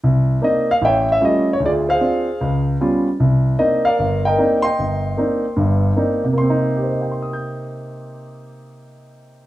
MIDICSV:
0, 0, Header, 1, 2, 480
1, 0, Start_track
1, 0, Key_signature, -3, "minor"
1, 0, Tempo, 394737
1, 44, Time_signature, 4, 2, 24, 8
1, 11511, End_track
2, 0, Start_track
2, 0, Title_t, "Grand piano"
2, 0, Program_c, 0, 0
2, 44, Note_on_c, 0, 36, 60
2, 456, Note_off_c, 0, 36, 0
2, 507, Note_on_c, 0, 58, 50
2, 514, Note_on_c, 0, 62, 45
2, 515, Note_on_c, 0, 60, 46
2, 520, Note_on_c, 0, 63, 54
2, 539, Note_on_c, 0, 75, 81
2, 837, Note_off_c, 0, 58, 0
2, 840, Note_off_c, 0, 62, 0
2, 841, Note_off_c, 0, 60, 0
2, 843, Note_off_c, 0, 63, 0
2, 844, Note_off_c, 0, 75, 0
2, 865, Note_on_c, 0, 77, 93
2, 926, Note_off_c, 0, 77, 0
2, 992, Note_on_c, 0, 33, 66
2, 1030, Note_on_c, 0, 76, 70
2, 1032, Note_on_c, 0, 79, 90
2, 1034, Note_on_c, 0, 73, 67
2, 1315, Note_off_c, 0, 79, 0
2, 1344, Note_off_c, 0, 76, 0
2, 1362, Note_on_c, 0, 76, 81
2, 1410, Note_off_c, 0, 33, 0
2, 1467, Note_on_c, 0, 55, 55
2, 1476, Note_on_c, 0, 57, 51
2, 1477, Note_on_c, 0, 61, 51
2, 1485, Note_on_c, 0, 65, 59
2, 1492, Note_off_c, 0, 76, 0
2, 1519, Note_on_c, 0, 75, 86
2, 1796, Note_off_c, 0, 55, 0
2, 1799, Note_off_c, 0, 75, 0
2, 1801, Note_off_c, 0, 57, 0
2, 1801, Note_off_c, 0, 61, 0
2, 1805, Note_off_c, 0, 65, 0
2, 1846, Note_off_c, 0, 73, 0
2, 1864, Note_on_c, 0, 73, 81
2, 1922, Note_off_c, 0, 73, 0
2, 1945, Note_on_c, 0, 38, 61
2, 2007, Note_on_c, 0, 65, 56
2, 2007, Note_on_c, 0, 68, 58
2, 2014, Note_on_c, 0, 74, 82
2, 2076, Note_off_c, 0, 74, 0
2, 2282, Note_off_c, 0, 68, 0
2, 2294, Note_on_c, 0, 72, 60
2, 2301, Note_on_c, 0, 68, 64
2, 2309, Note_on_c, 0, 77, 94
2, 2366, Note_off_c, 0, 38, 0
2, 2428, Note_off_c, 0, 65, 0
2, 2440, Note_on_c, 0, 60, 50
2, 2445, Note_on_c, 0, 62, 51
2, 2446, Note_on_c, 0, 65, 57
2, 2763, Note_off_c, 0, 60, 0
2, 2766, Note_off_c, 0, 62, 0
2, 2766, Note_off_c, 0, 65, 0
2, 2890, Note_off_c, 0, 72, 0
2, 2928, Note_on_c, 0, 37, 68
2, 3195, Note_off_c, 0, 68, 0
2, 3200, Note_off_c, 0, 77, 0
2, 3339, Note_off_c, 0, 37, 0
2, 3414, Note_on_c, 0, 55, 54
2, 3415, Note_on_c, 0, 59, 49
2, 3421, Note_on_c, 0, 61, 50
2, 3422, Note_on_c, 0, 65, 64
2, 3731, Note_off_c, 0, 55, 0
2, 3732, Note_off_c, 0, 59, 0
2, 3735, Note_off_c, 0, 61, 0
2, 3735, Note_off_c, 0, 65, 0
2, 3890, Note_on_c, 0, 36, 64
2, 4302, Note_off_c, 0, 36, 0
2, 4365, Note_on_c, 0, 58, 53
2, 4365, Note_on_c, 0, 62, 51
2, 4365, Note_on_c, 0, 75, 77
2, 4367, Note_on_c, 0, 60, 47
2, 4369, Note_on_c, 0, 63, 58
2, 4649, Note_off_c, 0, 75, 0
2, 4681, Note_on_c, 0, 77, 95
2, 4688, Note_off_c, 0, 58, 0
2, 4688, Note_off_c, 0, 62, 0
2, 4689, Note_off_c, 0, 60, 0
2, 4690, Note_off_c, 0, 63, 0
2, 4703, Note_on_c, 0, 70, 66
2, 4703, Note_on_c, 0, 74, 65
2, 4852, Note_on_c, 0, 31, 70
2, 5123, Note_off_c, 0, 77, 0
2, 5172, Note_on_c, 0, 79, 88
2, 5182, Note_off_c, 0, 70, 0
2, 5189, Note_on_c, 0, 75, 64
2, 5200, Note_on_c, 0, 70, 66
2, 5264, Note_off_c, 0, 31, 0
2, 5331, Note_on_c, 0, 58, 53
2, 5332, Note_on_c, 0, 62, 55
2, 5341, Note_on_c, 0, 60, 53
2, 5343, Note_on_c, 0, 63, 62
2, 5600, Note_off_c, 0, 74, 0
2, 5610, Note_off_c, 0, 79, 0
2, 5624, Note_on_c, 0, 84, 107
2, 5628, Note_off_c, 0, 75, 0
2, 5646, Note_on_c, 0, 75, 70
2, 5649, Note_on_c, 0, 79, 65
2, 5652, Note_off_c, 0, 58, 0
2, 5652, Note_off_c, 0, 62, 0
2, 5657, Note_off_c, 0, 60, 0
2, 5658, Note_off_c, 0, 63, 0
2, 5823, Note_on_c, 0, 31, 59
2, 6089, Note_off_c, 0, 70, 0
2, 6231, Note_off_c, 0, 31, 0
2, 6292, Note_on_c, 0, 58, 51
2, 6294, Note_on_c, 0, 60, 48
2, 6303, Note_on_c, 0, 62, 50
2, 6306, Note_on_c, 0, 63, 57
2, 6613, Note_off_c, 0, 58, 0
2, 6614, Note_off_c, 0, 60, 0
2, 6619, Note_off_c, 0, 62, 0
2, 6620, Note_off_c, 0, 63, 0
2, 6766, Note_on_c, 0, 43, 65
2, 6772, Note_on_c, 0, 31, 65
2, 7182, Note_off_c, 0, 43, 0
2, 7185, Note_off_c, 0, 31, 0
2, 7253, Note_on_c, 0, 58, 52
2, 7258, Note_on_c, 0, 60, 47
2, 7261, Note_on_c, 0, 62, 50
2, 7265, Note_on_c, 0, 63, 60
2, 7503, Note_off_c, 0, 84, 0
2, 7514, Note_off_c, 0, 75, 0
2, 7515, Note_off_c, 0, 79, 0
2, 7574, Note_off_c, 0, 58, 0
2, 7577, Note_off_c, 0, 60, 0
2, 7578, Note_off_c, 0, 62, 0
2, 7580, Note_off_c, 0, 63, 0
2, 7591, Note_on_c, 0, 48, 59
2, 7700, Note_on_c, 0, 58, 55
2, 7756, Note_on_c, 0, 84, 71
2, 7802, Note_on_c, 0, 60, 50
2, 7902, Note_on_c, 0, 63, 68
2, 8225, Note_on_c, 0, 67, 45
2, 8311, Note_on_c, 0, 72, 43
2, 8415, Note_on_c, 0, 75, 42
2, 8528, Note_on_c, 0, 79, 36
2, 8633, Note_off_c, 0, 84, 0
2, 8651, Note_on_c, 0, 84, 38
2, 8785, Note_on_c, 0, 87, 34
2, 8917, Note_on_c, 0, 91, 35
2, 11511, Note_off_c, 0, 48, 0
2, 11511, Note_off_c, 0, 58, 0
2, 11511, Note_off_c, 0, 60, 0
2, 11511, Note_off_c, 0, 63, 0
2, 11511, Note_off_c, 0, 67, 0
2, 11511, Note_off_c, 0, 72, 0
2, 11511, Note_off_c, 0, 75, 0
2, 11511, Note_off_c, 0, 79, 0
2, 11511, Note_off_c, 0, 84, 0
2, 11511, Note_off_c, 0, 87, 0
2, 11511, Note_off_c, 0, 91, 0
2, 11511, End_track
0, 0, End_of_file